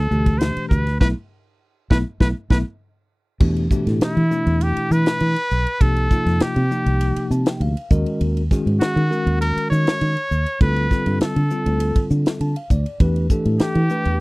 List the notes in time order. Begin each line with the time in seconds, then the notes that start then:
Already playing: A4
0.11 D2 B2 E3 A3 D4 G4, hi-hat pedal
0.26 kick, ride
0.38 C5, snare, hi-hat pedal, ride
0.56 muted fingered electric bass stroke, ride
0.69 D2 B4, kick, hi-hat pedal
0.87 snare, ride
1.00 B1 A3 B3 E4 B4, kick, snare
1.90 B1 A3 B3 E4 B4, kick, snare
2.20 B1 A3 B3 E4 B4, kick, snare
2.50 B1 A3 B3 E4 B4, kick, snare
3.40 E2 B2 E3 A3 D4 G4, kick, crash
3.56 ride
3.71 B2 E3 A3 D4 G4, kick, hi-hat pedal
3.87 A2, snare, ride
4.01 E4, muted fingered electric bass stroke, snare, ride
4.17 E3, ride
4.31 B2 E3 A3 D4 E4, hi-hat pedal
4.46 E2, ride
4.61 G4, ride
4.77 muted fingered electric bass stroke, ride
4.91 E3 B4, hi-hat pedal
5.06 snare, ride
5.20 E3, ride
5.36 ride
5.51 B1, hi-hat pedal
5.66 ride
5.81 C2 C3 F3 A#3 D#4 G4 A4, kick, ride
5.97 ride
6.11 C3 F3 A#3 D#4 F4, kick, hi-hat pedal
6.26 F2, snare, ride
6.40 G4, muted fingered electric bass stroke, snare, ride
6.56 C3, ride
6.71 C3 F3 A#3 D#4 G4, hi-hat pedal
6.86 C2, ride
7.01 ride
7.16 muted fingered electric bass stroke, ride
7.30 C3 A5, hi-hat pedal
7.46 G5, snare, ride
7.60 D2 F5, ride
7.77 ride
7.91 D#2 D#3 G#3 C#4 F#4 A#4 D#5, kick, hi-hat pedal
8.06 ride
8.21 D#2, ride
8.37 ride
8.51 D#3 G#3 C#4 F#4 G#4, kick, snare, hi-hat pedal
8.66 G#2, ride
8.80 F#4, muted fingered electric bass stroke, snare, ride
8.96 D#3, ride
9.11 D#3 G#3 C#4 F#4 A#4, hi-hat pedal
9.26 D#2, ride
9.41 A#4, ride
9.56 muted fingered electric bass stroke, ride
9.70 D#3 C#5, hi-hat pedal
9.87 snare, ride
10.01 D#3, ride
10.17 ride
10.31 D#2, hi-hat pedal
10.46 ride
10.61 D2 D3 G3 C4 F4 A4 B4, kick, ride
10.76 ride
10.91 D3 G3 C4 F4 A4, kick, snare, hi-hat pedal
11.06 G2, ride
11.21 A4, muted fingered electric bass stroke, snare, ride
11.36 D3, ride
11.50 D3 G3 C4 F4 A4, hi-hat pedal
11.66 D2, ride
11.80 ride
11.96 kick, ride
12.10 D3, hi-hat pedal
12.26 snare, ride
12.40 D3 A5, ride
12.56 F5, ride
12.70 D2 D5, kick, hi-hat pedal
12.86 ride
13.00 E2 E3 A3 D4 G4 B4, kick, ride
13.16 ride
13.30 E3 A3 D4 G4 A4, kick, hi-hat pedal
13.45 A2, ride
13.59 G4, muted fingered electric bass stroke, snare, ride
13.75 E3, ride
13.90 E3 A3 D4 G4 B4, hi-hat pedal
14.05 E2, ride